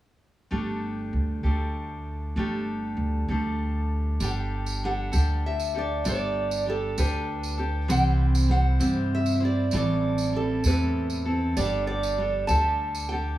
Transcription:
0.51 upright bass G1, steel-string acoustic guitar G3 A3 D4 G4 A4
1.13 upright bass D2
1.43 upright bass D2, steel-string acoustic guitar G3 A3 D4 G4 A4
2.36 upright bass G1, steel-string acoustic guitar G3 A3 D4 G4 A4
2.97 upright bass D2
3.28 upright bass D2, steel-string acoustic guitar G3 A3 D4 G4 A4
4.20 upright bass G1, steel-string acoustic guitar G3 D4 G4 A4, tambourine
4.24 steel-string acoustic guitar G5
4.66 tambourine
4.83 steel-string acoustic guitar G3 D4 G4 A4 F#5
5.12 upright bass D2, steel-string acoustic guitar G3 D4 G4 A4, tambourine
5.46 steel-string acoustic guitar E5
5.60 tambourine
5.74 steel-string acoustic guitar D4 G4 A4 D5
6.04 upright bass G1, steel-string acoustic guitar G3 D4 G4 A4, tambourine
6.09 steel-string acoustic guitar D5
6.51 tambourine
6.66 steel-string acoustic guitar G3 D4 G4 A4
6.98 upright bass D2, steel-string acoustic guitar G3 D4 G4 A4 B4, tambourine
7.43 tambourine
7.57 steel-string acoustic guitar D4 G4 A4
7.88 upright bass C2, steel-string acoustic guitar C3 E3 G3 C4 E4 C5 G5, tambourine
8.35 tambourine
8.48 steel-string acoustic guitar G3 C4 E4 C5 F#5
8.79 upright bass G2, steel-string acoustic guitar C3 E3 G3 C4 E4 C5, tambourine
9.15 steel-string acoustic guitar E5
9.26 tambourine
9.35 steel-string acoustic guitar E5
9.40 steel-string acoustic guitar G3 C4 E4 C5
9.45 steel-string acoustic guitar D5
9.71 upright bass A1, steel-string acoustic guitar A2 E3 G3 C4 E4 A4, tambourine
9.77 steel-string acoustic guitar D5
10.18 tambourine
10.33 steel-string acoustic guitar G3 C4 E4 A4
10.64 upright bass E2, steel-string acoustic guitar A2 E3 G3 C4 E4 A4 B4, tambourine
11.10 tambourine
11.25 steel-string acoustic guitar G3 C4 E4 A4
11.57 upright bass G1, steel-string acoustic guitar G3 D4 G4 A4 D5, tambourine
11.87 steel-string acoustic guitar D5
12.03 tambourine
12.18 steel-string acoustic guitar G3 D4 G4 A4
12.47 upright bass D2, steel-string acoustic guitar G4 A4 A5, tambourine
12.52 steel-string acoustic guitar G3 D4
12.95 tambourine
13.09 steel-string acoustic guitar A4 G5
13.13 steel-string acoustic guitar D4 G4

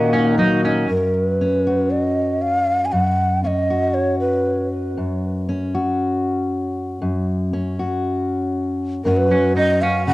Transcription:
Already playing: steel-string acoustic guitar A#2 D#3 A#3 D#4 F#4 A#4, accordion A#3 F#4 D#5, clean electric guitar C#4, shakuhachi F#5
0.13 clean electric guitar C#4, steel-string acoustic guitar D#4
0.38 steel-string acoustic guitar F#3, clean electric guitar D#4
0.65 clean electric guitar C#4, steel-string acoustic guitar D#4
0.89 steel-string acoustic guitar F#2, shakuhachi A#4
1.14 shakuhachi A#4
1.25 shakuhachi B4
1.41 steel-string acoustic guitar C#4
1.67 steel-string acoustic guitar F#4
1.91 shakuhachi D#5
2.42 shakuhachi F5
2.85 shakuhachi G#5
2.92 steel-string acoustic guitar F#2, shakuhachi F#5
3.44 steel-string acoustic guitar C#4, shakuhachi D#5 F5
3.70 steel-string acoustic guitar F#4
3.94 shakuhachi C#5
4.20 shakuhachi B4
4.97 steel-string acoustic guitar F#2
5.49 steel-string acoustic guitar C#4
5.75 steel-string acoustic guitar F#4
7.02 steel-string acoustic guitar F#2
7.53 steel-string acoustic guitar C#4
7.79 steel-string acoustic guitar F#4
9.05 steel-string acoustic guitar F#2 F#3 C#4 F#4, shakuhachi A#4
9.17 shakuhachi B4
9.30 steel-string acoustic guitar F#3, clean electric guitar C#4
9.56 steel-string acoustic guitar C#4, clean electric guitar D#4, shakuhachi D#5
9.82 clean electric guitar C#4, steel-string acoustic guitar F#4, shakuhachi F5
10.07 steel-string acoustic guitar C#3, shakuhachi F#5

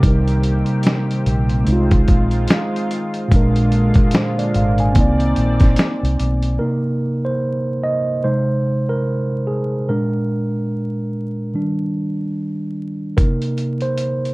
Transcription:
Already playing: analog synth pad A#3
0.00 fingered electric bass C2, tine electric piano C3 G3, analog synth pad D#3 C4, kick, closed hi-hat
0.04 tine electric piano D#4 A#4, analog synth pad G4
0.28 closed hi-hat
0.43 closed hi-hat
0.66 closed hi-hat
0.83 snare, closed hi-hat
1.11 closed hi-hat
1.26 fingered electric bass A#1, closed hi-hat
1.49 closed hi-hat
1.64 fingered electric bass C2, tine electric piano G#3 D#4, analog synth pad F4, closed hi-hat
1.68 analog synth pad D#3 G#3, tine electric piano F4
1.91 kick, closed hi-hat
2.08 fingered electric bass A#1, kick, closed hi-hat
2.31 closed hi-hat
2.48 snare, closed hi-hat
2.76 closed hi-hat
2.91 closed hi-hat
3.14 closed hi-hat
3.28 fingered electric bass A#1, tine electric piano A#2 G#3, analog synth pad D3, kick, closed hi-hat
3.32 analog synth pad G#3 A#3 F4, tine electric piano D4 A#4
3.56 closed hi-hat
3.72 closed hi-hat
3.94 kick, closed hi-hat
4.11 tine electric piano C5, snare, closed hi-hat
4.38 tine electric piano D5, closed hi-hat
4.54 fingered electric bass G#1, tine electric piano F5, closed hi-hat
4.78 tine electric piano G#5, closed hi-hat
4.93 fingered electric bass C2, analog synth pad D#3 C4 D5, tine electric piano A#3 C4, kick, closed hi-hat
4.98 tine electric piano D#4 D5
5.20 closed hi-hat
5.36 fingered electric bass A#1, closed hi-hat
5.60 kick, snare, closed hi-hat
5.76 snare, closed hi-hat
6.03 fingered electric bass C2, closed hi-hat
6.20 fingered electric bass B1, closed hi-hat
6.42 closed hi-hat
6.59 tine electric piano C3 A#3 D#4 A#4
7.25 tine electric piano C5
7.84 tine electric piano D#5
8.24 tine electric piano C3 G#3 D#4 C5
8.89 tine electric piano A#4
9.47 tine electric piano G#4
9.89 tine electric piano A#2 G#3 D4 A#4
11.54 tine electric piano D#3 G3 D4
13.17 tine electric piano C3 A#3 D#4 A#4, kick, closed hi-hat
13.42 closed hi-hat
13.58 closed hi-hat
13.81 tine electric piano C5, closed hi-hat
13.98 closed hi-hat
14.25 closed hi-hat

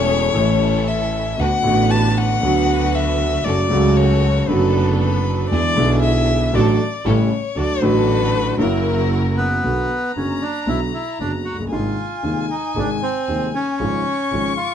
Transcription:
Already playing: grand piano E1 E2 E3 A3 C#4 A4, double bass E1, string section C#4 E4 A4, violin C#5
0.33 grand piano A1 A2 E3 A3 C#4, double bass A1, string section C#4 E4 A4
0.37 grand piano A4
0.88 violin E5
1.38 grand piano D2 D3 A3 B3 F#4, double bass D2, string section D4 F#4 B4, violin F#5
1.62 grand piano A1 A2 D3 A3 B3, double bass A1, string section D4 F#4 B4
1.66 grand piano F#4
1.91 violin A5
2.18 violin F#5
2.40 double bass D2, grand piano D2 D3 F#3 B3, string section D4 F#4 B4
2.45 grand piano F#4
2.95 violin E5
3.45 double bass F#1, grand piano F#2 C#3 F#3 A3 F#4, string section C#4 F#4 A4, violin D5
3.68 grand piano C#2 C#3 F#3 A3, double bass C#2, string section C#4 F#4 A4
3.73 grand piano F#4
3.97 violin C#5
4.47 double bass F#1, grand piano F#2 D3 F#3 A3 B3 F#4, string section B3 D4 A4, violin B4
5.00 violin B4
5.50 double bass E2, grand piano E2 D3 E3 G#3 B3 E4, string section D4 E4 G#4, violin D5
5.74 grand piano B1 B2 D3 G#3 B3, double bass B1, string section D4 E4 G#4
5.78 grand piano E4
6.03 violin E5
6.53 grand piano A1 A2 D3 F#3 A3 F#4, double bass A1, string section D4 F#4 A4, violin D5
7.05 double bass A1, grand piano A1 A2 C#3 G3 A3 E4, string section C#4 G4 A4, violin C#5
7.55 grand piano D2 D3 F#3 A3 F#4, double bass D2, string section D4 F#4 A4, violin D5
7.80 grand piano A1 A2 D3 F#3 A3 F#4, double bass A1, string section D4 F#4 A4, violin B4
8.57 double bass F#1, grand piano F#2 C#3 F#3 A#3, string section E4 F#4 A#4, violin A#4
8.61 grand piano E4
9.37 bandoneon B3
9.62 grand piano B1 B2 D3 F#3 B3 F#4, double bass B1, violin A#5
10.15 grand piano F#1 F#2 D3 F#3 B3 F#4, double bass F#1, bandoneon C#4
10.42 bandoneon D4
10.67 grand piano B1 B2 D3 F#3 B3 F#4, double bass B1, bandoneon E4
10.94 bandoneon E4
11.19 grand piano F#1 F#2 D3 F#3 B3 F#4, double bass F#1, bandoneon D4
11.45 double bass F#1, bandoneon F#4
11.52 grand piano F1
11.59 grand piano F#1
11.65 grand piano G1
11.72 grand piano G#1 G#2 C3 D#3 G#3 D#4, double bass G#1, bandoneon F4, violin G#5
12.23 grand piano D#1 D#2 C3 D#3 G#3 D#4, double bass D#2
12.50 bandoneon D#4
12.75 double bass G#1, grand piano G#1 G#2 C3 D#3 G#3 D#4, bandoneon D4
13.03 bandoneon C4
13.28 grand piano D#1 D#2 C3 D#3 G#3 D#4, double bass D#2
13.55 bandoneon C#4
13.78 grand piano G#1 G#2 C#3 F3 G#3 F4, double bass G#1, violin C#6
14.32 double bass G#1, grand piano G#1 G#2 C#3 F3 G#3 F4
14.57 bandoneon F4

